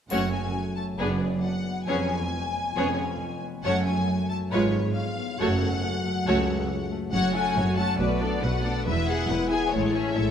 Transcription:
0.10 F#1 F#2 A3 C#4 F#4 C#5 F#5, triangle
0.32 A3 G#5
0.55 C#4
0.76 A3 A5
0.99 F#1 F#2 B3 D4 G#4 B4 D5
1.21 B3
1.43 D4 F#5
1.65 B3
1.86 F1 F2 B3 C#4 G#4 C#5 G#5
2.09 B3
2.31 C#4
2.54 B3
2.76 F1 F2 B3 C#4 G#4 C#5
2.98 F3
3.20 C#4
3.42 B3
3.64 F#1 F#2 A3 C#4 A4 C#5 F#5
3.85 A3 G#5
4.08 C#4
4.29 A3 A5
4.51 G#1 G#2 G#3 F4 B4 C#5
4.74 B3
4.95 F4 F5
5.18 B3
5.39 F#1 F#2 A3 F#4 A4 C#5 F#5
5.62 A3
5.83 F#4
6.05 A3
6.27 C#2 C#3 A3 F#4 A4 C#5
6.49 A3
6.70 F#4
6.91 A3
7.13 F#1 F#2 F#3 F#4 C#5 F#5
7.35 A3 C#4 A4 F#5 G#5
7.56 F#1 F#2 F#3 F#4 C#5
7.76 A3 C#4 A4 F#5 A5
7.99 B1 B2 A3 F#4 B4 D5
8.20 A3 B3 D4 A4 D5
8.42 B1 B2 A3 F#4 B4 F#5
8.64 A3 B3 D4 A4 D5
8.86 E1 E2 E3 G#3 E4 B4 E5
9.07 B3 E4 G#4 E5 F#5
9.29 E1 E2 G#3 E4 B4
9.50 B3 E4 G#4 E5 G#5
9.71 A1 A2 G#3 E4 A4 C#5
9.94 A3 C#4 G#4 E5
10.14 A1 A2 G#3 E4 A4 C#5 E5

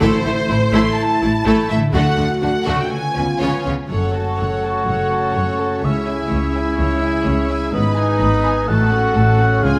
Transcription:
Already playing: A2 A3 E4 A4
0.00 A1 A2 A3 E4 A4 C5
0.24 A1 A2 A3 E4 A4
0.49 A1 A2 A3 E4
0.73 A1 A2 A3 E4 A4 C6
0.97 A5
1.21 A1 A2 A3 E4
1.45 A1 A2 A3 E4 A4
1.70 A1 A2 A3 E4 A4 E5
1.76 D3
1.80 A3
1.85 F#4
1.89 A4
1.93 D2 D3 A3 F#4 A4 F#5
2.17 D2 D3 A3 F#4 A4
2.41 D2 D3 A3 D4 F#4 F#5
2.66 D2 D3 A3 F#4 A4
2.74 C#3
2.79 C#4 G5
2.84 F4
2.88 B3 F4 B4 G#5
3.16 C#2 C#3 B3 C#4 B4
3.39 C#2 C#3 B3 C#4 F4 C#5
3.64 C#2 C#3 B3 C#4 F4 C#5
3.89 F#1 F#2 A3 C#4 F#4 A4 C#5 F#5
4.14 C#4 F#4 A4 A5
4.38 F#1 F#2 A4 C#5 F#5
4.63 F#4 A4 C#5 A5
4.87 F#1 F#2 C#3 A4 C#5 F#5
5.11 C#4 F#4 A4 A5
5.35 F#1 F#2 A4 C#5 F#5
5.59 F#4 A4 C#5 A5
5.82 C#2 C#3 G#3 C#4 E4 G#4 C#5 E5
6.07 C#4 E4 E5 G#5
6.30 C#2 C#4 G#4 C#5 E5
6.55 E4 C#5 E5 G#5
6.78 C#2 G#3 C#4 C#5 E5
7.02 C#4 E4 E5 G#5
7.26 C#2 C#4 G#4 C#5 E5
7.49 E4 C#5 E5 G#5
7.73 G#1 G#2 B3 D#4 B4 D#5 B5
7.96 B3 D#4 G#4 G#5
8.20 G#1 G#2 B3 G#4 B4 B5
8.44 D#4 G#4 B4 G#5
8.68 A1 A2 A3 C#4 F#4 A4 F#5 A5
8.91 A3 C#4 F#4 F#5
9.15 A1 A2 A3 F#4 A4 A5
9.39 C#4 F#4 A4 F#5
9.63 C#2 C#3 G#3 F4 G#4 F5 G#5

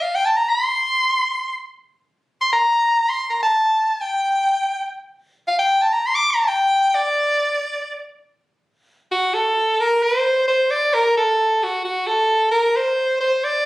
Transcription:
0.02 F5
0.15 G5
0.25 A5
0.37 A#5
0.49 C6
2.41 C6
2.53 A#5
3.09 C6
3.28 A#5 C6
3.43 A5
4.01 G5
5.48 F5
5.59 G5
5.82 A5
5.93 A#5
6.07 C6
6.15 D6
6.31 A#5
6.41 A5
6.48 G5
6.95 D5
9.12 F#4
9.34 A4
9.81 A#4
10.03 C5
10.48 C5
10.70 D5
10.94 A#4
11.17 A4
11.63 F#4
11.85 F#4
12.07 A4
12.51 A#4
12.76 C5
13.20 C5
13.44 D5

